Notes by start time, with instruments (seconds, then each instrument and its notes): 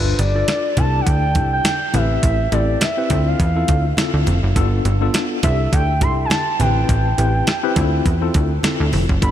Already playing: analog synth bass G1, tine electric piano D4 F4 A4 B4
0.19 analog synth bass G1, soft synth lead D5, closed hi-hat, muted conga
0.35 tine electric piano D4 F4 A4 D5
0.48 snare, closed hi-hat, high conga
0.77 analog synth bass C2, tine electric piano D4 E4 G4 A4, soft synth lead A5, kick, closed hi-hat, muted conga, low conga
1.01 soft synth lead F#5
1.06 analog synth bass D2, soft synth lead G5, kick, closed hi-hat, muted conga
1.35 analog synth bass C2, tine electric piano D4 E4 G4 A4, kick, closed hi-hat, muted conga, low conga
1.53 soft synth lead G5
1.64 snare, closed hi-hat, high conga
1.94 analog synth bass A1, tine electric piano C4 E4 G4 B4, soft synth lead E5, closed hi-hat, high conga
2.23 analog synth bass A1, kick, closed hi-hat
2.52 analog synth bass A1, tine electric piano C4 E4 G4 A4, soft synth lead D5, closed hi-hat, muted conga
2.81 soft synth lead E5, snare, closed hi-hat, high conga
2.97 tine electric piano C4 E4 G4 B4
3.10 analog synth bass D2, tine electric piano C4 E4 F4 A4, kick, closed hi-hat, muted conga, low conga
3.28 soft synth lead F5
3.40 analog synth bass E2, kick, closed hi-hat, muted conga
3.56 tine electric piano C4 E4 F4 A4
3.68 analog synth bass D2, kick, closed hi-hat, muted conga
3.97 tine electric piano C4 E4 F4 A4, snare, closed hi-hat, high conga
4.14 analog synth bass D2
4.27 analog synth bass F1, closed hi-hat, high conga
4.43 analog synth bass F#1
4.56 analog synth bass G1, tine electric piano B3 D4 F4 A4, kick, closed hi-hat
4.85 analog synth bass G1, closed hi-hat, muted conga
5.01 tine electric piano B3 D4 F4 A4
5.14 snare, closed hi-hat, high conga
5.43 analog synth bass C2, tine electric piano D4 E4 G4 A4, soft synth lead E5, kick, closed hi-hat, muted conga, low conga
5.73 analog synth bass D2, soft synth lead G5, kick, closed hi-hat, muted conga
6.01 analog synth bass C2, tine electric piano D4 E4 G4 A4, soft synth lead C6, kick, closed hi-hat, muted conga, low conga
6.25 soft synth lead G#5
6.30 soft synth lead A5, snare, closed hi-hat, high conga
6.60 analog synth bass A1, tine electric piano C4 E4 G4 B4, soft synth lead G5, closed hi-hat, high conga
6.89 analog synth bass A1, kick, closed hi-hat
7.18 analog synth bass A1, tine electric piano C4 E4 G4 B4, closed hi-hat, muted conga
7.47 snare, closed hi-hat, high conga
7.63 tine electric piano C4 E4 G4 B4
7.76 analog synth bass D2, tine electric piano C4 E4 F4 A4, kick, closed hi-hat, muted conga, low conga
8.06 analog synth bass E2, kick, closed hi-hat
8.21 tine electric piano C4 E4 F4 A4
8.34 analog synth bass D2, kick, closed hi-hat, muted conga
8.63 tine electric piano C4 E4 F4 A4, snare, closed hi-hat, high conga
8.80 analog synth bass D2
8.93 analog synth bass F1, open hi-hat, high conga
9.09 analog synth bass F#1, kick
9.22 analog synth bass G1, tine electric piano B3 D4 F4 A4, soft synth lead B5, kick, closed hi-hat